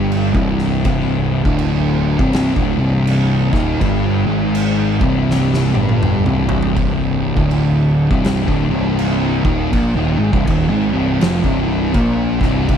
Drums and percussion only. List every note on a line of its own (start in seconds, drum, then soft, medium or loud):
0.12 crash medium
0.35 kick loud
0.58 snare soft
0.85 kick loud
0.85 crash medium
1.45 kick loud
1.59 crash medium
2.19 kick loud
2.33 snare loud
2.33 crash medium
2.56 kick loud
3.07 crash medium
3.53 kick loud
3.53 snare soft
3.81 kick loud
3.81 crash medium
4.55 crash medium
5.01 kick loud
5.31 snare medium
5.54 snare medium
5.75 high tom medium
5.89 high tom medium
6.03 mid tom medium
6.26 mid tom medium
6.49 floor tom medium
6.63 floor tom medium
6.76 kick loud
6.76 crash medium
7.37 kick loud
7.51 crash medium
8.11 kick loud
8.24 snare loud
8.24 crash medium
8.48 kick loud
8.99 crash medium
9.45 kick loud
9.73 kick loud
9.73 crash medium
10.33 kick loud
10.47 kick loud
10.47 crash medium
11.21 snare loud
11.21 crash medium
11.44 kick loud
11.94 kick loud
11.94 crash medium
12.41 kick loud
12.41 snare soft
12.69 kick loud
12.69 crash medium